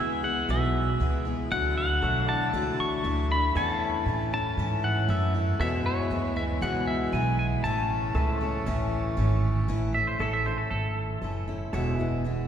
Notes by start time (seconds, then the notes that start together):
Already playing: C#2 E3 G#3 B3 E4 E5
0.00 B3 E4 G#4
0.23 E3 B3 E4 G#4 F#5
0.49 B1 E2 B2 E3 B3 E4 G#4 E5
1.00 C#2 E3 B3 E4 G#4
1.25 E3 B3 E4 G#4
1.50 D2 D3 E3 F#3 A3 D4 E4 A4 F#5
1.78 F#5
2.02 B1 F#3 A3 D4 E4 A4 C#5 E5
2.24 D5
2.28 A3 D4 E4 F#5 A5
2.53 C#2 D3 F#3 A3 D4 E4
2.79 C#6, muted upright bass stroke
3.04 D2 F#3 A3 D4 E4
3.30 A3 D4 E4 B5
3.55 E2 A2 E3 A3 C#4 E4 A4 D5 F#5 A5
3.76 C#5
3.82 E5
4.06 A2 E3 A3 C#4 E4
4.33 A3 C#4 E4 A5
4.57 G#2 E3 C#4 E4
4.84 F#5
5.08 F#2 E3 A3 C#4 E4 E5
5.34 A3 C#4 E4
5.60 E2 B2 E3 G#3 B3 E4 A4 C#5 E5
5.80 G#4
5.85 B4 C#5
6.11 D2 E3 G#3 B3 E4
6.36 E3 G#3 B3 E4 E5
6.61 C#2 E2 B2 E3 G#3 B3 E4 F#5
6.87 E5
7.12 B1 E3 G#3 B3 E4 G#5
7.39 G#5
7.64 A1 A2 E3 A3 C#4 E4 A5
8.14 C#2 E3 A3 C#4 E4 A4 B4 E5
8.41 A3 C#4 E4 C#5
8.66 A1 A2 E3 A3 C#4 E4
9.17 G#1 E3 A3 C#4 E4
9.68 A1 A2 E3 A3 C#4 E4
9.94 A3 C#4 E4 E5
10.07 C5
10.19 A1 E3 A3 C#4 E4 A4 C#5 E5
10.33 E5
10.45 A3 C#4 E4 C5
10.58 A4
10.71 G#1 A4
11.22 F#1 E3 A3 C#4 E4
11.48 A3 C#4 E4
11.73 E1 E2 B2 E3 G#3 B3 E4 A4 C#5 E5
11.93 G#4
11.99 E3 G#3 B3 E4 B4
12.24 E3 G#3 B3 E4